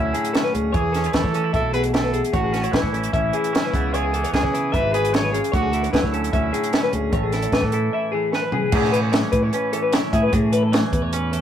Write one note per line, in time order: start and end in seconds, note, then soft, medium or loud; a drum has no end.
0.00 0.11 D2 medium
0.00 0.72 D3 medium
0.00 0.73 F#3 medium
0.00 0.35 C#4 soft
0.00 0.47 E4 medium
0.00 0.74 E4 soft
0.00 0.14 E5 medium
0.13 0.72 A2 medium
0.13 0.33 G#4 medium
0.13 closed hi-hat medium
0.25 closed hi-hat medium
0.33 0.73 C#4 medium
0.33 0.43 A4 medium
0.33 snare medium
0.33 closed hi-hat medium
0.44 0.53 B4 medium
0.53 0.71 D2 medium
0.53 0.73 G#4 medium
0.53 closed hi-hat medium
0.73 1.07 E2 medium
0.73 2.71 E3 medium
0.73 1.15 G#4 medium
0.73 0.83 C#5 medium
0.73 kick medium
0.73 closed hi-hat medium
0.81 0.92 G#4 medium
0.92 1.06 C#4 medium
0.92 1.03 A4 medium
0.92 snare soft
0.92 closed hi-hat medium
1.02 1.34 E4 soft
1.02 1.12 C#5 medium
1.02 closed hi-hat soft
1.12 1.22 E2 medium
1.12 2.32 A3 medium
1.12 1.54 A4 medium
1.12 1.22 B4 medium
1.12 kick medium
1.12 snare medium
1.12 closed hi-hat medium
1.22 1.55 E3 medium
1.22 1.33 C#5 medium
1.22 kick medium
1.33 1.44 C#4 soft
1.33 1.53 A4 medium
1.33 closed hi-hat medium
1.44 1.54 E4 soft
1.53 2.20 B1 medium
1.53 1.93 E4 medium
1.53 1.72 A4 medium
1.53 1.73 E5 medium
1.53 kick medium
1.53 closed hi-hat soft
1.73 2.31 B2 medium
1.73 1.93 G#4 medium
1.73 1.83 B4 medium
1.73 closed hi-hat soft
1.83 closed hi-hat medium
1.93 2.52 E4 medium
1.93 2.03 A4 medium
1.93 2.22 A4 medium
1.93 snare medium
1.93 closed hi-hat soft
2.03 2.13 B4 medium
2.13 2.33 G#4 medium
2.13 closed hi-hat medium
2.24 closed hi-hat soft
2.33 2.67 A1 medium
2.33 3.70 A2 medium
2.33 2.75 F#4 medium
2.33 2.43 C#5 medium
2.33 kick medium
2.33 closed hi-hat medium
2.43 2.53 G#4 medium
2.53 2.62 C#4 medium
2.53 2.63 A4 medium
2.53 snare soft
2.53 closed hi-hat soft
2.62 3.72 E4 soft
2.62 2.73 C#5 medium
2.62 closed hi-hat soft
2.71 2.82 A1 medium
2.71 3.33 E3 medium
2.71 3.13 E4 medium
2.71 2.82 B4 medium
2.71 kick medium
2.71 snare medium
2.71 closed hi-hat soft
2.83 3.08 A1 medium
2.83 2.93 C#5 medium
2.83 kick medium
2.93 3.14 C#4 soft
2.93 3.13 A4 medium
2.93 closed hi-hat soft
3.03 closed hi-hat medium
3.13 3.30 A1 medium
3.13 3.52 C#4 soft
3.13 3.95 E4 medium
3.13 3.33 E5 medium
3.13 kick medium
3.13 closed hi-hat medium
3.33 3.72 E3 medium
3.33 3.53 G#4 medium
3.33 closed hi-hat medium
3.44 closed hi-hat medium
3.53 3.74 C#4 medium
3.53 3.64 A4 medium
3.53 snare medium
3.53 closed hi-hat medium
3.64 3.74 B4 medium
3.73 4.23 C#2 medium
3.73 4.13 C#3 medium
3.73 4.14 E3 medium
3.73 5.31 B3 soft
3.73 3.93 G#4 medium
3.73 kick medium
3.73 closed hi-hat medium
3.94 4.33 E4 medium
3.94 4.33 G#4 medium
3.94 4.03 C#5 medium
3.94 closed hi-hat medium
4.03 4.13 G#4 medium
4.13 5.93 E3 medium
4.13 4.24 A4 medium
4.13 closed hi-hat medium
4.24 4.33 C#5 medium
4.24 closed hi-hat medium
4.33 4.42 C#2 medium
4.33 4.43 C#4 soft
4.33 4.75 G#4 medium
4.33 4.42 B4 medium
4.33 kick medium
4.33 snare medium
4.33 closed hi-hat medium
4.43 4.75 C#3 medium
4.43 4.53 E4 soft
4.43 4.52 C#5 medium
4.43 kick medium
4.52 5.57 E4 medium
4.52 4.73 B4 medium
4.52 closed hi-hat medium
4.72 5.40 G#1 medium
4.72 5.31 G#2 medium
4.72 4.93 B4 medium
4.72 4.93 E5 medium
4.72 kick medium
4.72 closed hi-hat medium
4.92 5.13 G#4 medium
4.92 5.57 G#4 medium
4.92 5.15 B4 medium
4.92 closed hi-hat medium
5.05 closed hi-hat medium
5.13 5.22 A4 medium
5.13 5.43 C#5 medium
5.13 snare medium
5.13 closed hi-hat medium
5.23 5.32 B4 medium
5.33 5.51 C#3 medium
5.33 5.53 G#4 medium
5.33 closed hi-hat medium
5.44 closed hi-hat medium
5.52 5.87 D2 medium
5.52 7.11 D3 medium
5.52 5.90 F#4 medium
5.52 5.62 C#5 medium
5.52 kick loud
5.52 closed hi-hat medium
5.62 5.71 G#4 medium
5.72 7.33 E4 medium
5.72 5.83 A4 medium
5.72 closed hi-hat soft
5.83 5.92 C#5 medium
5.83 closed hi-hat soft
5.92 6.02 D2 medium
5.92 7.11 F#3 medium
5.92 6.30 E4 medium
5.92 6.03 B4 medium
5.92 kick medium
5.92 snare medium
5.92 closed hi-hat soft
6.03 6.28 D2 medium
6.03 6.13 C#5 medium
6.03 kick medium
6.13 6.34 C#4 medium
6.13 6.33 A4 medium
6.13 closed hi-hat soft
6.24 closed hi-hat medium
6.32 6.50 D2 medium
6.32 6.73 C#4 medium
6.32 6.88 E4 medium
6.32 6.53 E5 medium
6.32 kick medium
6.32 closed hi-hat soft
6.53 7.11 A2 medium
6.53 6.73 G#4 medium
6.53 closed hi-hat medium
6.63 closed hi-hat medium
6.73 8.38 C#4 medium
6.73 6.83 A4 medium
6.73 snare medium
6.73 closed hi-hat soft
6.83 6.92 B4 medium
6.92 7.10 D2 medium
6.92 7.13 G#4 medium
6.92 closed hi-hat medium
7.11 7.46 A1 medium
7.11 8.70 A2 medium
7.11 8.28 A4 medium
7.11 7.23 C#5 medium
7.11 kick medium
7.11 closed hi-hat medium
7.23 7.33 G#4 medium
7.32 7.72 E4 medium
7.32 7.43 A4 medium
7.32 snare soft
7.32 closed hi-hat medium
7.42 7.53 C#5 medium
7.42 closed hi-hat medium
7.52 7.61 A1 medium
7.52 8.13 E3 medium
7.52 7.64 B4 medium
7.52 kick medium
7.52 snare medium
7.52 closed hi-hat soft
7.63 7.88 A2 medium
7.63 7.73 C#5 medium
7.63 kick medium
7.72 7.93 E4 soft
7.72 7.93 A4 medium
7.72 closed hi-hat medium
7.93 8.71 E4 soft
7.93 8.13 E5 medium
8.12 8.71 E3 medium
8.12 8.32 G#4 medium
8.32 8.42 A4 medium
8.32 8.71 B4 medium
8.32 snare soft
8.42 8.52 B4 medium
8.52 8.71 G#4 medium
8.52 floor tom medium
8.72 9.22 A2 medium
8.72 10.30 A2 medium
8.72 9.13 E3 medium
8.72 9.54 C#4 medium
8.72 9.94 E4 medium
8.72 8.92 G#4 medium
8.72 kick loud
8.72 crash loud
8.76 10.14 G#4 medium
8.84 snare soft
8.92 9.01 B4 medium
8.92 closed hi-hat medium
9.02 9.12 A4 medium
9.12 9.73 E3 medium
9.12 9.32 C#5 medium
9.12 snare loud
9.12 closed hi-hat medium
9.32 9.49 A2 medium
9.32 9.43 B4 medium
9.32 kick medium
9.32 closed hi-hat medium
9.43 9.53 C#5 medium
9.53 11.13 C#4 medium
9.53 9.72 B4 medium
9.53 closed hi-hat medium
9.73 10.72 E3 medium
9.73 9.82 A4 medium
9.73 closed hi-hat medium
9.82 9.92 B4 medium
9.92 11.41 E4 medium
9.92 10.12 C#5 medium
9.92 snare loud
9.92 closed hi-hat medium
10.13 10.30 A2 medium
10.13 10.36 G#4 medium
10.13 10.23 E5 medium
10.13 kick medium
10.13 closed hi-hat medium
10.23 10.33 B4 medium
10.33 11.41 A2 medium
10.33 10.83 A2 loud
10.33 10.53 G#4 medium
10.33 kick loud
10.33 closed hi-hat medium
10.53 10.63 B4 medium
10.53 closed hi-hat medium
10.63 10.72 A4 medium
10.72 11.33 E3 medium
10.72 10.92 C#5 medium
10.72 snare loud
10.72 closed hi-hat medium
10.92 11.41 E2 medium
10.92 11.02 B4 medium
10.92 kick medium
10.92 closed hi-hat medium
11.02 11.12 C#5 medium
11.12 11.41 C#4 medium
11.12 11.32 B4 medium
11.12 closed hi-hat medium
11.32 11.41 E3 medium
11.32 11.41 A4 medium
11.32 closed hi-hat medium